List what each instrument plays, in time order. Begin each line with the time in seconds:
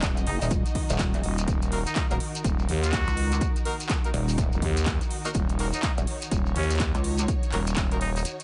Already playing: string section D#3 D#4 F#4 D#5
0.02 wobble bass D#1, kick, snare, clap, closed hi-hat, shekere
0.17 closed hi-hat, shekere
0.27 wobble bass F#1, muted trumpet D#4, closed hi-hat, open hi-hat
0.41 wobble bass D#1, muted trumpet D#4, open hi-hat, shekere
0.51 kick, closed hi-hat, shekere
0.66 closed hi-hat, shekere
0.75 kick, snare, closed hi-hat, open hi-hat
0.90 wobble bass D#1, closed hi-hat, shekere
0.99 kick, snare, clap, closed hi-hat, shekere
1.13 snare, closed hi-hat, shekere
1.23 fm bass D#1, closed hi-hat, open hi-hat
1.38 closed hi-hat, shekere
1.48 fm bass D#1, string section A#4, kick, closed hi-hat, shekere
1.62 closed hi-hat, shekere
1.72 horn section A#3 D#4 F#4 A#4, open hi-hat
1.87 muted trumpet D#4, snare, closed hi-hat, shekere
1.96 muted trumpet D#4, kick, snare, clap, closed hi-hat, shekere
2.11 wobble bass D#1, horn section A#3 D#4 F#4 A#4, closed hi-hat, shekere
2.20 closed hi-hat, open hi-hat
2.35 closed hi-hat, shekere
2.44 fm bass D#1, kick, closed hi-hat, shekere
2.59 shekere
2.69 fm bass D#2, closed hi-hat, open hi-hat
2.83 muted trumpet F#4, snare, closed hi-hat, shekere
2.92 kick, snare, clap, closed hi-hat, shekere
3.08 wobble bass C#2, closed hi-hat, shekere
3.17 closed hi-hat, open hi-hat
3.32 closed hi-hat, shekere
3.41 kick, closed hi-hat, shekere
3.56 closed hi-hat, shekere
3.65 horn section A#3 D#4 F#4 A#4, closed hi-hat, open hi-hat
3.80 closed hi-hat, shekere
3.89 kick, snare, clap, closed hi-hat, shekere
4.04 horn section A#3 D#4 F#4 A#4, closed hi-hat, shekere
4.14 wobble bass D#1, closed hi-hat, open hi-hat
4.28 open hi-hat, shekere
4.38 kick, closed hi-hat, shekere
4.52 fm bass D#1, closed hi-hat, shekere
4.62 fm bass D#2, kick, snare, closed hi-hat, open hi-hat
4.77 closed hi-hat, shekere
4.86 kick, snare, clap, closed hi-hat, shekere
5.01 snare, closed hi-hat, shekere
5.11 closed hi-hat, open hi-hat
5.25 horn section A#3 D#4 F#4 A#4, closed hi-hat, shekere
5.34 fm bass D#1, string section C#5, kick, closed hi-hat, shekere
5.49 closed hi-hat, shekere
5.59 horn section A#3 D#4 F#4 A#4, open hi-hat
5.73 muted trumpet D#4, snare, closed hi-hat, shekere
5.83 kick, snare, clap, closed hi-hat, shekere
5.98 wobble bass D#1, closed hi-hat, shekere
6.07 closed hi-hat, open hi-hat
6.22 closed hi-hat, shekere
6.31 fm bass D#1, kick, closed hi-hat, shekere
6.46 shekere
6.56 fm bass D#2, muted trumpet C#4, snare, closed hi-hat, open hi-hat
6.63 snare, closed hi-hat
6.70 snare, closed hi-hat, shekere
6.75 snare, closed hi-hat
6.79 kick, snare, clap, closed hi-hat, shekere
6.95 wobble bass C#2, closed hi-hat, shekere
7.04 closed hi-hat, open hi-hat
7.18 closed hi-hat, shekere
7.28 kick, closed hi-hat, shekere
7.43 closed hi-hat, shekere
7.52 fm bass D#1, horn section A#3 D#4 F#4 A#4, clap, closed hi-hat, open hi-hat
7.67 closed hi-hat, shekere
7.76 fm bass D#1, kick, snare, clap, closed hi-hat, shekere
7.91 horn section A#3 D#4 F#4 A#4, closed hi-hat, shekere
8.01 muted trumpet D#4, closed hi-hat, open hi-hat
8.16 muted trumpet D#4, open hi-hat, shekere
8.25 closed hi-hat, shekere
8.40 closed hi-hat, shekere